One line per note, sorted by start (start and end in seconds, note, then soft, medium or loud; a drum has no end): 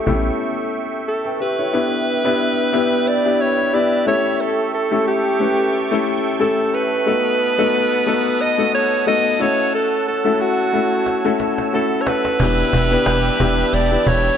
0.00 0.06 A3 medium
0.00 0.13 C#4 medium
0.00 0.07 E4 medium
0.00 0.07 G4 medium
0.00 1.69 A4 medium
0.00 1.70 E5 medium
0.00 1.70 G5 medium
0.00 1.70 C#6 medium
0.06 0.31 A1 medium
0.06 1.01 A3 medium
0.06 0.14 B3 medium
0.06 1.01 E4 medium
0.06 1.01 G4 medium
0.06 cajon bass loud
0.13 1.04 C#4 medium
0.25 cajon slap soft
1.08 1.38 A4 medium
1.25 1.40 B4 medium
1.25 1.39 G5 medium
1.40 1.58 G4 medium
1.40 3.09 B4 loud
1.40 1.57 E5 medium
1.59 1.72 E4 medium
1.59 1.90 C#5 medium
1.73 2.08 B3 medium
1.73 2.09 D4 medium
1.73 2.09 E4 medium
1.73 2.09 G4 medium
1.73 4.04 B4 medium
1.73 2.09 B4 medium
1.73 7.02 E5 medium
1.73 4.04 G5 medium
2.24 2.60 B3 medium
2.24 2.60 D4 medium
2.24 2.60 E4 medium
2.24 2.60 G4 medium
2.24 2.60 B4 loud
2.73 3.08 B3 medium
2.73 3.08 D4 medium
2.73 3.09 E4 medium
2.73 3.09 G4 medium
2.73 3.09 B4 loud
3.08 3.42 D5 loud
3.25 3.60 B3 medium
3.25 3.60 D4 medium
3.25 3.60 E4 medium
3.25 3.60 G4 medium
3.25 3.60 B4 medium
3.41 3.76 C#5 loud
3.73 4.06 B3 medium
3.73 4.06 D4 medium
3.73 4.05 E4 medium
3.73 4.06 G4 medium
3.73 4.07 B4 medium
3.73 4.07 D5 loud
4.06 4.73 A3 medium
4.06 4.73 C#4 medium
4.06 4.73 E4 medium
4.06 4.73 G4 medium
4.06 7.04 A4 medium
4.06 4.74 A4 medium
4.06 4.42 C#5 loud
4.06 7.03 G5 medium
4.06 7.04 C#6 medium
4.41 4.74 A4 loud
4.74 5.05 A4 medium
4.91 5.26 A3 medium
4.91 5.26 C#4 medium
4.91 5.27 E4 medium
4.91 5.27 G4 medium
4.91 5.27 A4 medium
5.08 6.10 G4 loud
5.40 5.75 A3 medium
5.40 5.75 C#4 medium
5.40 5.75 E4 medium
5.40 5.75 G4 medium
5.40 5.76 B4 medium
5.91 6.26 A3 medium
5.91 6.26 C#4 medium
5.91 6.27 E4 medium
5.91 6.27 G4 medium
5.91 6.27 A4 loud
6.39 6.88 A3 medium
6.39 6.88 C#4 medium
6.39 6.88 E4 medium
6.39 6.88 G4 medium
6.39 6.88 A4 medium
6.39 6.76 A4 loud
6.74 8.42 B4 loud
7.06 7.42 A3 medium
7.06 7.42 B3 medium
7.06 7.42 D#4 medium
7.06 7.42 F#4 medium
7.06 7.42 A4 medium
7.06 9.37 B4 medium
7.06 12.36 F#5 medium
7.06 12.36 A5 medium
7.06 9.38 D#6 medium
7.58 7.93 A3 medium
7.58 7.93 B3 medium
7.58 7.93 D#4 medium
7.58 7.93 F#4 medium
7.58 7.94 A4 loud
8.06 8.42 A3 medium
8.06 8.42 B3 medium
8.06 8.42 D#4 medium
8.06 8.42 F#4 medium
8.06 8.42 A4 loud
8.41 8.74 D#5 loud
8.58 8.93 A3 medium
8.58 8.93 B3 medium
8.58 8.93 D#4 medium
8.58 8.93 F#4 medium
8.58 8.94 A4 medium
8.75 9.05 C#5 loud
9.06 9.38 A3 medium
9.06 9.40 B3 medium
9.06 9.40 D#4 medium
9.06 9.39 F#4 medium
9.06 9.39 A4 medium
9.06 9.43 D#5 loud
9.39 10.06 A3 medium
9.39 10.06 C#4 medium
9.39 10.07 E4 medium
9.39 10.07 F#4 medium
9.39 10.07 A4 medium
9.39 12.37 C#5 medium
9.39 9.74 C#5 loud
9.39 14.37 E6 medium
9.75 10.05 A4 loud
10.08 10.42 A4 loud
10.24 10.60 A3 medium
10.24 10.60 C#4 medium
10.24 10.60 E4 medium
10.24 10.60 F#4 medium
10.24 10.60 A4 medium
10.41 11.47 F#4 loud
10.73 11.08 A3 medium
10.73 11.08 C#4 medium
10.73 11.09 E4 medium
10.73 11.09 F#4 medium
10.73 11.09 A4 medium
11.06 cajon slap medium
11.24 11.60 A3 medium
11.24 11.60 C#4 medium
11.24 11.60 E4 medium
11.24 11.60 F#4 medium
11.24 11.60 A4 medium
11.40 cajon slap medium
11.58 cajon slap medium
11.73 12.21 A3 medium
11.73 12.21 C#4 medium
11.73 12.22 E4 medium
11.73 12.22 F#4 medium
11.73 12.22 A4 medium
11.73 12.03 A4 medium
12.01 12.09 C#5 medium
12.07 13.76 B4 loud
12.07 cajon slap loud
12.25 cajon slap medium
12.39 12.64 E1 loud
12.39 13.05 E2 medium
12.39 13.06 B2 medium
12.39 13.08 E3 medium
12.39 12.75 B3 medium
12.39 12.75 D4 medium
12.39 14.37 D4 medium
12.39 14.36 D4 medium
12.39 14.36 E4 medium
12.39 12.75 E4 medium
12.39 14.36 G4 loud
12.39 12.75 G4 medium
12.39 12.76 B4 medium
12.39 14.37 G5 medium
12.39 14.37 B5 medium
12.39 cajon bass loud
12.73 12.97 E1 loud
12.73 cajon bass loud
12.91 13.26 B3 medium
12.91 13.26 D4 medium
12.91 13.27 E4 medium
12.91 13.27 G4 medium
12.91 13.27 B4 loud
13.06 13.30 E1 loud
13.06 13.71 E2 medium
13.06 13.72 B2 medium
13.06 13.74 E3 medium
13.06 cajon slap loud
13.25 cajon slap soft
13.39 13.64 E1 loud
13.39 13.75 B3 medium
13.39 13.75 D4 medium
13.39 13.75 E4 medium
13.39 13.75 G4 medium
13.39 13.76 B4 loud
13.39 cajon bass loud
13.72 13.97 E1 loud
13.72 14.37 E2 medium
13.72 14.37 B2 medium
13.72 14.37 E3 medium
13.72 14.09 D5 loud
13.72 cajon slap medium
13.91 14.26 B3 medium
13.91 14.26 D4 medium
13.91 14.27 E4 medium
13.91 14.27 G4 medium
13.91 14.27 B4 medium
14.07 14.31 E1 loud
14.07 14.37 C#5 loud
14.07 cajon bass loud